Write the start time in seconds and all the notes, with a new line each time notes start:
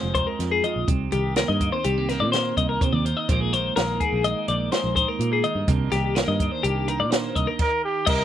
Already playing: F2 F3 G#3 C4 D#4 C5
0.03 F1
0.15 D#4 C5, kick, closed hi-hat
0.27 A#4
0.39 F2, snare, closed hi-hat
0.51 G#4
0.63 F3 D#5, closed hi-hat
0.76 A#1
0.88 C2 C3, kick, closed hi-hat
1.12 C2 D#3 G4, closed hi-hat
1.36 A#3 A#4, snare, closed hi-hat
1.48 G2 D#5
1.60 A#3, kick, closed hi-hat
1.72 C4 C5
1.84 C2 G3 G4, closed hi-hat
1.98 A#3
2.09 D#3 A#4, snare, closed hi-hat
2.20 A#2 D5
2.32 A#3 C5, snare, closed hi-hat
2.57 C2 D#4 D#5, kick, closed hi-hat
2.69 A#4
2.81 C3 C5, kick, closed hi-hat
2.93 D#2 D5
3.05 D#3 C5, closed hi-hat
3.17 D#5
3.29 A#1 A#2 D#3 G#3 A#3 D#4 C5, kick, closed hi-hat
3.40 G#4
3.53 D#3 C5, closed hi-hat
3.76 A#1 G#3 A#4, snare, closed hi-hat
4.00 A#3 G#4, kick, closed hi-hat
4.12 A#1
4.24 G#3 D#5, closed hi-hat
4.48 A#1 D#3 D5, closed hi-hat
4.72 G#3 C5, snare, closed hi-hat
4.84 A#1
4.96 D#4 C5, kick, closed hi-hat
5.08 A#4
5.19 A#2, closed hi-hat
5.33 G#4
5.44 D#3 D#5, closed hi-hat
5.55 G2
5.68 C2 C3 D#3 A#3 D4 D#4, kick, closed hi-hat
5.91 C2 D#3 G4, snare, closed hi-hat
6.15 A#3 A#4, snare, closed hi-hat
6.28 G2 D#5
6.40 D4, kick, closed hi-hat
6.52 C5
6.63 C2 A#3 G4, closed hi-hat
6.88 D#3 A#4, closed hi-hat
7.00 A#2 D5
7.11 A#3 C5, snare, closed hi-hat
7.36 C2 D#4 D#5, kick, closed hi-hat
7.47 A#4
7.59 A#4, kick, crash
7.84 G4
8.06 C2 C3 D#4 A#4 D#5, kick, crash